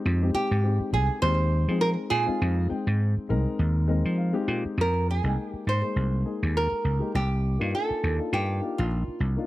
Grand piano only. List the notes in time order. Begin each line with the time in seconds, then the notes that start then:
Already playing: G#3 C4 D#4 G4
0.21 G#3 C4 D#4 G4
0.63 G#3 C4 D#4 G4
1.22 G#3 C4 D#4 G4
1.69 G#3 C4 D#4 G#4
2.26 G#3 C4 D#4 F4
2.69 G#3 C4 D#4 G5
3.29 G#3 C4 D#4 A#4
3.88 G#3 C4 D#4 A#4 D#5
4.18 F5
4.33 G#3 C4 D#4 G4
4.48 G5
5.23 G#3 A#3 D#4 G5
5.82 G#3 A#3 D#4 G#4
6.24 G#3 A#3 D#4 G#4
6.99 G#3 A#3 D#4 G4
7.59 A#3 D4 D#4 F4
8.18 A#3 D4 D#4 F4
8.61 A#3 D4 D#4 F4
9.37 A#3 D4 D#4 F4